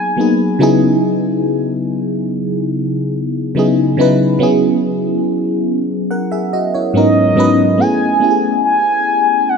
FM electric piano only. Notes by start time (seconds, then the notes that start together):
0.17 F#3 A#3 B3 D#4
0.21 G#4
0.59 C#3 F#3 B3 D#4 E4
0.63 G#4
3.55 C#3 F#3 B3 D#4 E4
3.59 G#4
3.97 C#3 F#3 B3 D#4 E4
4.01 B4
4.39 F#3 B3 C#4 E4
4.43 G#4
6.11 A#4 F#5
6.32 G#4 E5
6.53 F#4 D#5
6.74 E4 C#5
6.93 G#2 F#3 B3 C#4 D#4
6.97 A#4
7.36 G#2 F#3 B3 C#4 D#4
7.40 B4
7.78 A3 B3 C#4 E4
7.82 G#4
8.20 A3 B3 C#4 E4 G4
8.31 G#4